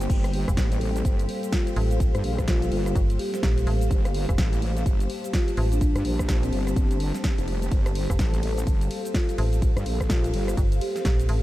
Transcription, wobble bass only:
0.10 G1
0.57 A1
1.05 G1
2.15 G2
2.24 A#1
2.72 G1
3.91 G1
4.38 A1
4.86 G1
5.96 G2
6.05 A#1
6.53 G1
6.76 G1
7.38 F1
7.72 G1
8.19 A1
8.67 G1
9.77 G2
9.86 A#1
10.34 G1

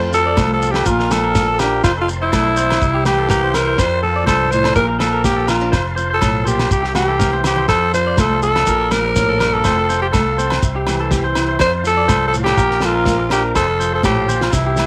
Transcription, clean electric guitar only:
Already playing: C5
0.26 D5
0.75 A4
0.85 A#4
0.99 A#4
1.24 A#4
1.48 A4
1.59 A#4
1.84 C5
1.97 A4
2.08 muted clean electric guitar stroke
2.22 C5
2.33 A4
2.57 C5
2.94 G4
3.19 A4
3.30 A#4
3.44 C5
3.67 C5
3.78 C5
4.16 D5
4.26 C5
4.64 A4
4.75 A#4
4.88 A#4
4.99 A4
5.13 A#4
5.37 A4
5.48 A#4
5.72 C5
5.96 C5
6.10 C5
6.21 A4
6.45 C5
6.83 G4
7.08 A4
7.19 A#4
7.33 C5
7.58 C5
7.69 C5
8.07 D5
8.18 C5
8.56 A4
8.67 A#4
8.80 A#4
8.91 muted clean electric guitar stroke
9.05 A#4
9.29 A4
9.41 A#4
9.65 C5
9.78 A4
9.89 C5
10.03 C5
10.14 A4
10.38 C5
10.76 G4
11.00 A4
11.11 G4
11.24 C5
11.49 C5
11.59 C5
11.97 D5
12.08 C5
12.45 A4
12.57 A#4
12.70 A#4
12.82 A4
12.95 A#4
13.20 muted clean electric guitar stroke
13.31 A#4
13.56 C5
13.68 A4
13.80 C5
13.94 C5
14.04 A4
14.29 C5
14.67 G4

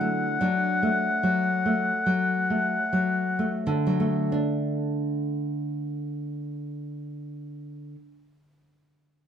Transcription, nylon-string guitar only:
Already playing: D3 F#3 E4
0.01 A3
0.41 F#3 D4
0.83 A3
1.23 F#3
1.66 A3
2.06 F#3
2.50 A3
2.93 F#3
3.39 A3
3.67 D3
3.87 F#3
4.00 A3
4.32 D4

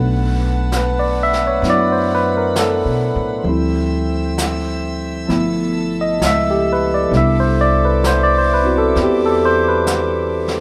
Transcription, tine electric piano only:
Already playing: F#3 A3 B3 D4
0.77 B4
0.99 D5
1.23 E5
1.47 C#5
1.63 B3 D4 E4
1.70 D5
1.92 C5
2.15 B4
2.37 A#4
2.59 A4
3.43 F3 G3 C4
3.49 E4
5.28 F3 A3 B3 E4
6.01 D#5
6.26 E5
6.51 G4
6.73 B4
6.94 D5
7.09 G3 B3 D4
7.14 E4 E5
7.40 C5
7.61 D5
7.85 B4
8.07 C5
8.23 D5
8.38 C5
8.54 B4
8.63 C4 E4 F#4
8.78 A4
9.03 G4
9.26 A4
9.45 C5
9.68 B4

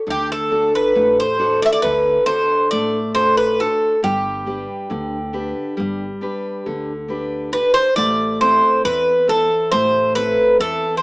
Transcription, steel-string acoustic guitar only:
0.07 D3
0.50 D4 F#4 A4
0.95 A3
1.39 D4 F#4 A4
1.83 D3
2.26 D4 F#4 A4
2.72 A3
3.15 D4 F#4 A4
3.59 D4 F#4 A4
4.03 G3
4.46 D4 G4 B4
4.90 D3
5.33 D4 G4 B4
5.77 G3
6.21 D4 G4 B4
6.66 D3
7.08 D4 G4 B4
7.52 D4 G4 B4
7.97 A3
8.41 C4 E4 A4
8.85 E3
9.28 E4 A4 C5
9.73 A3
10.16 C4 E4 A4
10.60 E3

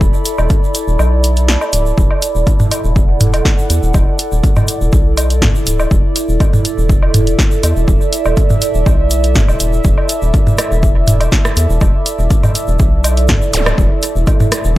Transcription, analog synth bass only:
0.01 E1
0.39 E1
0.88 E1
0.99 B1
1.73 D1
1.98 E1
2.35 E1
2.84 E1
3.70 E2
3.83 E1
3.94 E1
4.32 E1
4.81 E1
4.93 B1
5.67 D1
5.91 E1
6.29 E1
6.78 E1
7.63 E2
7.76 E1
7.88 E1
8.26 E1
8.75 E1
8.86 B1
9.35 G1
9.49 E1
9.60 E1
9.85 E1
10.22 E1
10.71 E1
11.57 E2
11.70 E1
11.81 E1
12.19 E1
12.68 E1
12.80 B1
13.53 D1
13.78 E1
14.16 E1
14.65 E1

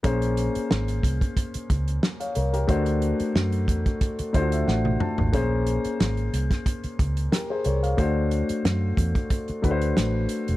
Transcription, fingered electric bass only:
0.05 A#1
0.56 muted fingered electric bass stroke
0.71 G#1
1.04 C2
1.55 muted fingered electric bass stroke
1.70 C#2
2.37 C2
2.69 D2
3.20 muted fingered electric bass stroke
3.35 F#2
3.69 E2
4.20 muted fingered electric bass stroke
4.35 D2
4.68 A1
5.19 G#1
5.34 A#1
5.85 muted fingered electric bass stroke
6.00 G#1
6.33 C2
6.84 muted fingered electric bass stroke
7.00 C#2
7.66 C2
7.99 D2
8.50 muted fingered electric bass stroke
8.65 F#2
8.98 E2
9.50 muted fingered electric bass stroke
9.64 D2
9.98 A1
10.49 E1

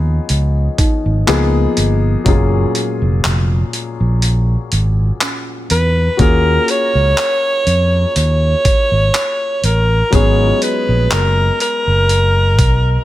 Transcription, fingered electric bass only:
Already playing: D#2
0.30 C#2
1.06 G#1
1.28 C#2
1.77 G1
2.26 F#1
3.02 F1
3.25 F1
4.00 A#1
4.72 G#1
5.71 E2
6.19 D#2
6.95 C#2
7.67 F2
8.16 D#2
8.92 G#1
9.63 A1
10.13 G#1
10.89 A#1
11.11 F#1
11.87 F#1
12.59 B1

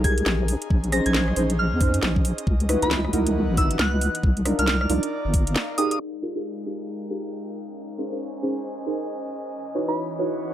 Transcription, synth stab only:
0.04 D#4 G4 G#4 A#4
0.92 C#4 D#4 G#4 C5
1.06 C#4 D#4 G#4 C5
1.37 C#4 D#4 G#4 C5
1.81 C#4 D#4 G#4 C5
2.69 D#4 E4 F#4 B4
2.82 D#4 E4 F#4 B4
3.13 D#4 E4 F#4 A#4
3.57 D#4 E4 F#4 B4
4.45 D4 D#4 F4 A#4
4.59 D4 D#4 F4 A#4
4.90 D4 D#4 F4 A#4
5.78 D#4 G4 G#4 A#4
6.22 D#4 F4 G4 G#4 A#4
6.36 D#4 F4 G4 G#4 A#4
6.66 D#4 F4 G4 G#4 A#4
7.10 D#4 F4 G4 G#4 A#4
7.98 C#4 D#4 G#4 A#4 C5
8.12 C#4 D#4 G#4 A#4 C5
8.42 C#4 D#4 G#4 A#4 C5
8.86 C#4 D#4 G#4 A#4 C5
9.75 D#4 E4 F#4 B4 C#5
9.88 D#4 E4 F#4 B4 C#5
10.19 D#4 E4 F#4 B4 C#5

